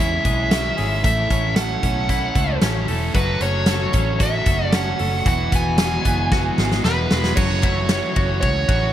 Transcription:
Already playing: fingered electric bass E2, clean electric guitar C#3 G#3 C#4
0.00 overdriven electric guitar E3 C#4 E4 G#4, lead electric guitar E5
0.25 fingered electric bass B1, clean electric guitar G#3, kick, closed hi-hat
0.50 overdriven electric guitar C#3 E3 C#4 E4 G#4, snare, closed hi-hat
0.77 fingered electric bass G#1, clean electric guitar G#3, overdriven electric guitar C#4 E4 G#4, open hi-hat
1.03 fingered electric bass A1, overdriven electric guitar A2 E3 A3 C#4 E4 A4, lead electric guitar E5, kick, closed hi-hat
1.30 fingered electric bass A1, overdriven electric guitar A3 C#4 E4 A4, kick, closed hi-hat
1.56 overdriven electric guitar A2 E3 A3 C#4 E4 A4, lead electric guitar F#5, snare, closed hi-hat
1.83 fingered electric bass B1, overdriven electric guitar A3 C#4 E4 A4, kick, closed hi-hat
2.09 overdriven electric guitar A3 C#4 E4 A4, kick, closed hi-hat
2.35 fingered electric bass C#2, clean electric guitar A3, kick, closed hi-hat
2.61 fingered electric bass A1, overdriven electric guitar A2 E3 A3 C#4 E4 A4, snare, closed hi-hat
2.87 fingered electric bass E1, overdriven electric guitar A3 C#4 E4 A4, open hi-hat
3.13 fingered electric bass F#1, overdriven electric guitar F#2 C#3 F#3 A3 F#4 A4, lead electric guitar B4, kick, closed hi-hat
3.40 fingered electric bass F#1, overdriven electric guitar F#3 A3 F#4 A4, clean electric guitar C#4, lead electric guitar C#5, closed hi-hat
3.66 overdriven electric guitar F#2 C#3 F#3 A3 F#4 A4, snare, closed hi-hat
3.93 fingered electric bass A1, overdriven electric guitar F#3 A3 F#4 A4, clean electric guitar C#4, kick, closed hi-hat
4.19 overdriven electric guitar F#3 A3 F#4 A4, lead electric guitar E5, kick, snare, closed hi-hat
4.46 fingered electric bass F#1, clean electric guitar A3, kick, closed hi-hat
4.65 lead electric guitar D5
4.72 overdriven electric guitar F#2 C#3 F#3 A3 F#4 A4, clean electric guitar C#4, lead electric guitar F#5, snare, closed hi-hat
4.99 fingered electric bass F#1, overdriven electric guitar F#3 A3 F#4 A4, open hi-hat
5.26 fingered electric bass E1, overdriven electric guitar E3 G#3 B3 E4 F#4, lead electric guitar F#5, kick, closed hi-hat
5.52 fingered electric bass E1, overdriven electric guitar B3 E4 F#4, lead electric guitar G#5, kick, closed hi-hat
5.78 overdriven electric guitar E3 G#3 B3 E4 F#4, snare, closed hi-hat
6.05 fingered electric bass F#1, overdriven electric guitar B3 E4 F#4, kick, closed hi-hat
6.32 overdriven electric guitar G#3 B3 E4 F#4, kick, snare
6.58 fingered electric bass G#1, clean electric guitar G#3, snare
6.71 snare
6.83 fingered electric bass E1, overdriven electric guitar E3 G#3 B3 E4 F#4, clean electric guitar A3, lead electric guitar B4, snare
6.98 clean electric guitar B3
7.10 fingered electric bass E1, clean electric guitar G#3, overdriven electric guitar B3 E4 F#4, snare
7.24 snare
7.36 fingered electric bass F#1, overdriven electric guitar F#2 C#3 E3 A3 C#4 F#4, clean electric guitar F#3, lead electric guitar C#5, kick, crash
7.63 overdriven electric guitar E3 A3 C#4 F#4, clean electric guitar E4, kick, clap, ride
7.89 overdriven electric guitar E3 A3 C#4 F#4, clean electric guitar C#5, snare, clap, ride
8.16 fingered electric bass F#1, clean electric guitar F#4, kick, ride
8.41 fingered electric bass C#2, lead electric guitar C#5, clean electric guitar C#5, kick, ride
8.68 fingered electric bass A1, overdriven electric guitar E3 A3 C#4 F#4, kick, ride

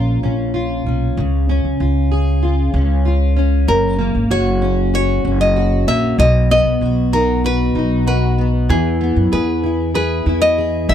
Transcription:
Already playing: upright bass A#1, steel-string acoustic guitar A#2 C#4 F4 A#4
0.23 upright bass A#1, steel-string acoustic guitar C#4
0.54 steel-string acoustic guitar F4
0.86 upright bass B1, steel-string acoustic guitar C#4
1.17 upright bass C#2, steel-string acoustic guitar C#3
1.49 steel-string acoustic guitar C#4
1.65 upright bass C#2
1.80 upright bass C#2, steel-string acoustic guitar F4
2.12 steel-string acoustic guitar G#4
2.43 steel-string acoustic guitar F4
2.74 upright bass C#2, steel-string acoustic guitar C#4
3.05 steel-string acoustic guitar F4
3.36 steel-string acoustic guitar C#4
3.68 upright bass F#1, steel-string acoustic guitar F#2, nylon-string guitar A#4
3.99 steel-string acoustic guitar A#3
4.15 upright bass G#1
4.30 upright bass F#1, steel-string acoustic guitar F#4, nylon-string guitar C#5
4.62 steel-string acoustic guitar C#4
4.94 steel-string acoustic guitar F#4, nylon-string guitar C#5
5.25 upright bass F#1, steel-string acoustic guitar C#4
5.41 nylon-string guitar D#5
5.56 steel-string acoustic guitar F#4
5.87 upright bass A#1, steel-string acoustic guitar A#3, nylon-string guitar E5
6.18 upright bass B1, steel-string acoustic guitar B2, nylon-string guitar D#5
6.51 steel-string acoustic guitar B3, nylon-string guitar D#5
6.65 upright bass B1
6.81 upright bass B1, steel-string acoustic guitar F#4
7.13 steel-string acoustic guitar D#4, nylon-string guitar A#4
7.44 steel-string acoustic guitar F#4, nylon-string guitar B4
7.75 upright bass B1, steel-string acoustic guitar D#4
8.07 steel-string acoustic guitar F#4, nylon-string guitar B4
8.38 steel-string acoustic guitar B3
8.69 upright bass E2, steel-string acoustic guitar E3, nylon-string guitar G#4
9.01 steel-string acoustic guitar B3
9.16 upright bass F#2
9.32 upright bass E2, steel-string acoustic guitar G#4, nylon-string guitar B4
9.64 steel-string acoustic guitar E4
9.95 steel-string acoustic guitar G#4, nylon-string guitar B4
10.26 upright bass E2, steel-string acoustic guitar E4
10.42 nylon-string guitar D#5
10.58 steel-string acoustic guitar G#4
10.89 upright bass G#1, steel-string acoustic guitar G#2, nylon-string guitar E5

